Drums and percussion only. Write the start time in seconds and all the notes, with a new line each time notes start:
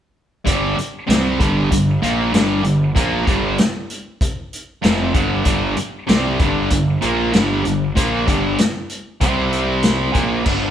0.47 kick, closed hi-hat
0.78 closed hi-hat
1.10 snare, closed hi-hat
1.40 kick, closed hi-hat
1.72 kick, closed hi-hat
2.03 closed hi-hat
2.34 snare, closed hi-hat
2.64 closed hi-hat
2.96 kick, closed hi-hat
3.27 kick, closed hi-hat
3.58 snare, closed hi-hat
3.90 closed hi-hat
4.21 kick, closed hi-hat
4.53 closed hi-hat
4.83 snare, closed hi-hat
5.14 kick, closed hi-hat
5.45 kick, closed hi-hat
5.77 closed hi-hat
6.09 snare, closed hi-hat
6.39 kick, closed hi-hat
6.70 kick, closed hi-hat
7.02 closed hi-hat
7.33 snare, closed hi-hat
7.65 closed hi-hat
7.97 kick, closed hi-hat
8.28 kick, closed hi-hat
8.58 snare, closed hi-hat
8.90 closed hi-hat
9.21 kick, closed hi-hat
9.53 closed hi-hat
9.83 snare, closed hi-hat
10.15 kick, closed hi-hat
10.46 kick, crash